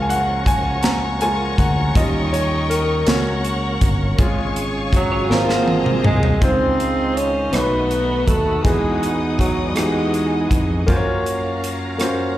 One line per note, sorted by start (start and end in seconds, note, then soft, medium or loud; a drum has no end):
0.00 1.54 C#2 medium
0.00 1.92 F3 medium
0.00 1.92 F#3 medium
0.00 0.21 G#3 medium
0.00 0.22 A#3 soft
0.00 1.92 C#4 medium
0.00 0.22 F4 medium
0.00 1.91 A#4 medium
0.00 1.93 C#5 medium
0.00 1.98 F5 medium
0.00 0.47 G#5 medium
0.00 4.14 A#5 medium
0.00 4.15 C#6 medium
0.10 0.44 F#5 medium
0.10 closed hi-hat medium
0.46 0.85 G#5 medium
0.46 kick medium
0.46 closed hi-hat medium
0.83 1.18 A#5 medium
0.83 snare medium
0.83 closed hi-hat medium
1.21 1.55 G#3 soft
1.21 1.55 A#3 soft
1.21 1.55 F4 medium
1.21 1.56 G#5 loud
1.21 closed hi-hat soft
1.58 1.92 D2 medium
1.58 1.97 F#5 medium
1.58 kick medium
1.58 closed hi-hat medium
1.95 3.03 D#2 medium
1.95 2.03 F3 soft
1.95 3.03 G3 medium
1.95 3.03 C#4 soft
1.95 3.08 C#4 medium
1.95 3.07 D#4 medium
1.95 3.04 F4 medium
1.95 3.07 A#4 medium
1.95 3.06 D#5 medium
1.95 2.34 D#5 medium
1.95 3.06 G5 medium
1.95 kick loud
1.95 closed hi-hat medium
2.03 3.11 G3 medium
2.33 2.41 C#5 medium
2.33 closed hi-hat medium
2.70 3.08 A#4 medium
2.70 closed hi-hat medium
3.06 3.78 C#2 loud
3.06 4.19 F#3 medium
3.06 4.14 A#3 medium
3.06 4.20 A#3 medium
3.06 4.15 C#4 medium
3.06 4.17 C#4 medium
3.06 4.15 F#4 medium
3.06 3.14 A4 medium
3.06 4.17 C#5 medium
3.06 4.89 C#5 medium
3.06 4.17 F#5 medium
3.06 snare loud
3.06 closed hi-hat medium
3.16 4.23 A#4 medium
3.44 closed hi-hat soft
3.81 4.16 G1 medium
3.81 kick medium
3.81 closed hi-hat medium
4.17 5.26 G#1 medium
4.17 5.30 C#3 medium
4.17 5.29 G#3 medium
4.17 4.68 G#3 medium
4.17 5.30 C#4 medium
4.17 4.68 C#4 soft
4.17 4.69 F4 medium
4.17 5.29 G#4 medium
4.17 5.29 C#5 medium
4.17 5.29 F5 medium
4.17 6.39 G#5 medium
4.17 5.28 C#6 medium
4.17 kick loud
4.17 closed hi-hat medium
4.56 closed hi-hat medium
4.93 5.28 F#3 medium
4.93 5.34 F#3 medium
4.93 5.28 F#4 medium
4.93 kick medium
4.93 closed hi-hat medium
5.12 5.30 F4 medium
5.12 5.29 C#5 medium
5.30 6.01 G#1 loud
5.30 6.05 F3 medium
5.30 6.06 F3 loud
5.30 6.42 G#3 medium
5.30 5.79 A#3 soft
5.30 6.41 A#3 medium
5.30 6.38 A#3 medium
5.30 6.42 C4 medium
5.30 5.80 C4 soft
5.30 6.38 C4 medium
5.30 6.05 F4 medium
5.30 6.41 G#4 medium
5.30 5.80 G#4 medium
5.30 5.48 A#4 medium
5.30 6.41 C5 medium
5.30 6.40 D#5 medium
5.30 6.41 A#5 medium
5.30 snare medium
5.49 6.38 A#3 medium
5.49 6.38 F#4 medium
5.49 snare medium
5.68 high tom medium
5.86 mid tom medium
6.03 6.39 C2 medium
6.03 6.19 G#3 medium
6.03 6.45 G#3 medium
6.03 6.19 G#4 medium
6.03 mid tom medium
6.23 floor tom medium
6.40 7.49 C#2 medium
6.40 7.53 C#3 soft
6.40 7.49 C#3 medium
6.40 7.52 D#3 medium
6.40 7.27 G#3 medium
6.40 7.12 C4 medium
6.40 7.28 C4 medium
6.40 7.20 C4 medium
6.40 6.48 D#4 soft
6.40 7.28 D#4 medium
6.40 7.50 D#4 medium
6.40 7.29 F4 medium
6.40 7.50 F4 medium
6.40 7.12 C5 medium
6.40 7.29 C5 medium
6.40 8.62 D#5 medium
6.40 7.52 F5 soft
6.40 7.52 C6 medium
6.40 kick loud
6.40 closed hi-hat medium
6.48 7.56 F4 medium
6.80 closed hi-hat soft
7.14 7.52 C#4 medium
7.14 7.56 C#4 medium
7.14 7.52 C#5 medium
7.14 closed hi-hat medium
7.51 8.23 B1 medium
7.51 8.61 B2 medium
7.51 8.65 D#3 medium
7.51 8.38 A3 medium
7.51 8.65 A3 medium
7.51 8.39 B3 soft
7.51 8.64 B3 soft
7.51 8.27 B3 medium
7.51 8.28 B3 medium
7.51 8.40 D#4 soft
7.51 8.64 F#4 medium
7.51 8.40 F#4 soft
7.51 7.61 A4 soft
7.51 8.27 B4 medium
7.51 8.64 F#5 medium
7.51 8.64 A5 medium
7.51 8.64 B5 medium
7.51 cross-stick medium
7.51 closed hi-hat medium
7.56 8.62 D#4 medium
7.56 8.62 F#4 medium
7.61 8.44 B4 medium
7.91 closed hi-hat soft
8.26 8.62 D#2 medium
8.26 8.64 A3 medium
8.26 8.66 A3 medium
8.26 8.64 A4 medium
8.26 kick medium
8.26 closed hi-hat medium
8.63 10.47 E2 medium
8.63 10.84 E3 soft
8.63 9.73 E3 medium
8.63 9.11 G#3 medium
8.63 9.51 G#3 medium
8.63 10.84 G#3 soft
8.63 9.12 G#3 medium
8.63 9.73 B3 medium
8.63 9.51 D#4 medium
8.63 10.84 D#4 soft
8.63 9.73 D#4 medium
8.63 10.84 F#4 medium
8.63 9.52 F#4 medium
8.63 9.11 G#4 medium
8.63 9.51 G#4 medium
8.63 9.52 B4 medium
8.63 10.86 D#5 medium
8.63 10.86 F#5 medium
8.63 10.86 G#5 medium
8.63 10.86 D#6 medium
8.63 kick medium
8.63 closed hi-hat medium
9.03 closed hi-hat soft
9.38 9.73 F#3 medium
9.38 9.70 F#3 medium
9.38 9.73 F#4 medium
9.38 kick medium
9.38 closed hi-hat medium
9.69 9.77 G3 medium
9.75 10.63 E3 soft
9.75 10.62 G#3 medium
9.75 10.59 G#3 medium
9.75 10.60 G#3 medium
9.75 10.84 B3 medium
9.75 10.62 D#4 soft
9.75 10.84 D#4 medium
9.75 10.63 F#4 medium
9.75 9.84 G4 soft
9.75 10.60 G#4 medium
9.75 cross-stick medium
9.75 closed hi-hat medium
9.85 10.67 G#4 medium
10.14 closed hi-hat soft
10.51 10.85 F2 medium
10.51 kick medium
10.51 closed hi-hat medium
10.87 12.38 F#2 medium
10.87 12.38 F#3 medium
10.87 11.74 A#3 medium
10.87 11.74 C#4 medium
10.87 12.38 C#4 medium
10.87 11.74 F4 medium
10.87 11.75 F#4 medium
10.87 12.38 A#4 medium
10.87 10.95 C5 medium
10.87 12.38 F5 medium
10.87 12.38 A#5 medium
10.87 kick medium
10.87 closed hi-hat medium
10.96 11.78 C#5 medium
11.26 closed hi-hat medium
11.64 closed hi-hat medium
11.98 12.38 A#3 medium
11.98 12.38 C#4 medium
11.98 12.38 F4 medium
11.98 12.38 F#4 medium
11.98 12.38 C5 medium
11.98 cross-stick medium
11.98 closed hi-hat medium